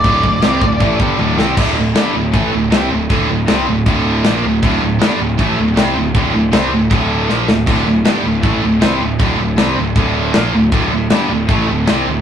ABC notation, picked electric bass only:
X:1
M:4/4
L:1/8
Q:1/4=157
K:Cmix
V:1 name="Picked electric bass" clef=bass
D,,, D,,, C,, D,,, A,,, G,,, D,,, C,, | D,,, D,,, G,,, D,,, A,,, D,,, C,, D,,, | D,,, D,,, C,, D,,, D,,,2 B,,, D,,, | D,,, D,,, G,,, D,,, A,,, D,,, C,, D,,, |
D,,, D,,, C,, D,,, D,,,2 B,,, D,,, | D,,, D,,, G,,, D,,, A,,, D,,, C,, D,,, | D,,, D,,, C,, D,,, D,,,2 B,,, D,,, | D,,, D,,, G,,, D,,, A,,, D,,, C,, D,,, |]